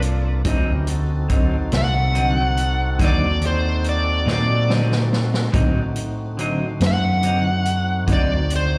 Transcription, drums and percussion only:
0.02 closed hi-hat
0.45 kick, closed hi-hat
0.87 closed hi-hat
1.29 kick, closed hi-hat
1.72 snare, closed hi-hat
2.15 closed hi-hat
2.57 closed hi-hat
2.99 kick, snare, closed hi-hat
3.42 closed hi-hat
3.84 closed hi-hat
4.28 snare
4.70 snare
4.92 snare
5.13 snare
5.34 snare
5.54 kick, closed hi-hat
5.96 closed hi-hat
6.39 closed hi-hat
6.80 snare, closed hi-hat
7.23 closed hi-hat
7.65 closed hi-hat
8.07 kick, closed hi-hat
8.50 closed hi-hat

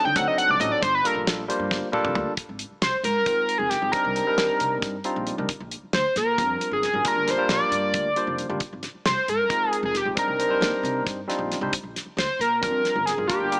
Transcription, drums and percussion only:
0.16 kick, snare, closed hi-hat
0.38 closed hi-hat
0.61 closed hi-hat
0.83 kick, closed hi-hat
1.05 closed hi-hat
1.27 snare, closed hi-hat
1.50 closed hi-hat
1.71 kick, snare
1.93 high tom
2.05 mid tom
2.15 mid tom
2.37 kick, closed hi-hat
2.59 closed hi-hat
2.82 snare, closed hi-hat
3.04 closed hi-hat
3.26 kick, closed hi-hat
3.49 closed hi-hat
3.71 snare, closed hi-hat
3.93 kick, closed hi-hat
4.16 closed hi-hat
4.38 snare, closed hi-hat
4.60 closed hi-hat
4.82 kick, snare, closed hi-hat
5.04 closed hi-hat
5.27 closed hi-hat
5.49 kick, closed hi-hat
5.71 closed hi-hat
5.93 snare, closed hi-hat
6.16 snare, closed hi-hat
6.38 kick, closed hi-hat
6.61 closed hi-hat
6.83 snare, closed hi-hat
7.05 kick, closed hi-hat
7.28 snare, closed hi-hat
7.49 snare, closed hi-hat
7.72 closed hi-hat
7.94 kick, closed hi-hat
8.16 closed hi-hat
8.38 closed hi-hat
8.60 kick, closed hi-hat
8.83 snare, closed hi-hat
9.06 snare, closed hi-hat
9.28 closed hi-hat
9.50 kick, closed hi-hat
9.73 closed hi-hat
9.95 snare, closed hi-hat
10.17 kick, closed hi-hat
10.40 closed hi-hat
10.62 snare, closed hi-hat
10.85 closed hi-hat
11.07 kick, snare, closed hi-hat
11.30 snare, closed hi-hat
11.52 snare, closed hi-hat
11.73 kick, closed hi-hat
11.96 snare, closed hi-hat
12.19 snare, closed hi-hat
12.41 closed hi-hat
12.63 kick, closed hi-hat
12.85 snare, closed hi-hat
13.07 snare, closed hi-hat
13.30 kick, closed hi-hat
13.52 closed hi-hat

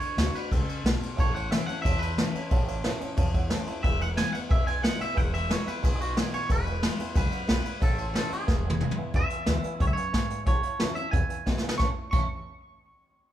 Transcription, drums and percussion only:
0.01 ride
0.18 snare, ride
0.35 ride
0.52 kick, ride
0.69 ride
0.86 snare, ride
1.03 ride
1.19 kick, ride
1.36 ride
1.52 snare, ride
1.69 ride
1.85 kick, ride
2.02 ride
2.18 snare, ride
2.35 ride
2.51 kick, ride
2.68 ride
2.84 snare, ride
3.01 ride
3.17 kick, ride
3.34 kick, ride
3.50 snare, ride
3.67 ride
3.84 kick, ride
4.01 ride
4.17 snare, ride
4.34 ride
4.51 kick, ride
4.67 ride
4.84 snare, ride
5.01 ride
5.17 kick, ride
5.34 ride
5.51 snare, ride
5.67 ride
5.84 kick, snare, ride
6.01 ride
6.17 snare, ride
6.33 ride
6.50 kick, ride
6.67 ride
6.83 snare, ride
6.99 ride
7.15 kick, snare, ride
7.32 ride
7.49 snare, ride
7.65 ride
7.82 kick, ride
7.98 ride
8.15 snare, ride
8.32 ride
8.48 kick, snare
8.70 high tom
8.80 mid tom
8.91 mid tom
9.14 kick, closed hi-hat
9.30 closed hi-hat
9.46 snare, closed hi-hat
9.63 closed hi-hat
9.80 kick, closed hi-hat
9.97 closed hi-hat
10.14 kick, snare, closed hi-hat
10.30 closed hi-hat
10.46 kick, closed hi-hat
10.63 closed hi-hat
10.80 snare, closed hi-hat
10.96 closed hi-hat
11.13 kick, closed hi-hat
11.30 closed hi-hat
11.47 kick, snare
11.58 snare
11.69 snare
11.79 kick, snare
12.12 kick, crash

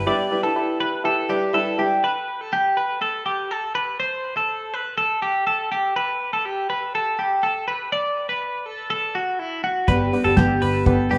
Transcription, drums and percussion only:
9.88 kick, closed hi-hat
10.13 open hi-hat
10.37 kick, snare, closed hi-hat
10.62 open hi-hat
10.86 kick, closed hi-hat
11.11 open hi-hat

